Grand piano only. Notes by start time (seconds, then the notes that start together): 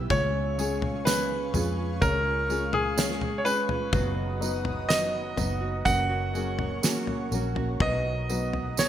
0.11 C#5
1.05 B4
2.02 A#4
2.74 G#4
3.38 C#5
3.45 B4
4.89 D#5
5.85 F#5
7.82 D#5
8.79 C#5